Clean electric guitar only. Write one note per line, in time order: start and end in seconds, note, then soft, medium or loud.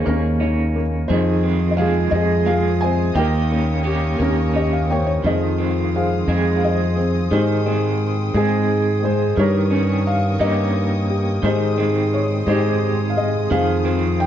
0.00 1.07 D#3 medium
0.00 0.39 C#4 medium
0.00 1.08 G#4 medium
0.06 1.16 A#3 medium
0.40 1.16 C#4 medium
1.09 3.15 D#3 medium
1.09 1.77 G#4 medium
1.43 1.76 C4 medium
1.77 2.10 G#3 medium
1.77 2.44 C4 medium
1.77 3.14 G#4 medium
2.12 3.14 G#3 medium
2.46 3.22 C4 medium
3.14 3.83 A#3 medium
3.14 3.84 G4 medium
3.50 3.83 C#4 medium
3.84 4.17 A#3 medium
3.84 4.52 C#4 medium
3.84 5.31 G4 medium
4.19 5.31 A#3 medium
4.54 5.31 C#4 medium
5.23 7.30 D#3 medium
5.58 6.28 C4 medium
6.28 7.38 G#3 medium
6.28 7.39 C4 medium
6.28 7.39 G#4 medium
7.31 9.35 D#3 medium
7.66 8.34 C4 medium
8.34 9.44 G#3 medium
8.34 9.44 C4 medium
9.37 11.41 D#3 medium
9.70 10.39 C#4 medium
10.39 11.50 A#3 medium
10.39 11.50 C#4 medium
10.39 11.51 G4 medium
11.43 13.49 D#3 medium
11.78 12.47 C4 medium
12.46 14.27 G#3 medium
12.46 13.85 C4 medium
12.46 13.58 G4 medium
13.50 14.27 D#3 medium
13.85 14.27 C4 medium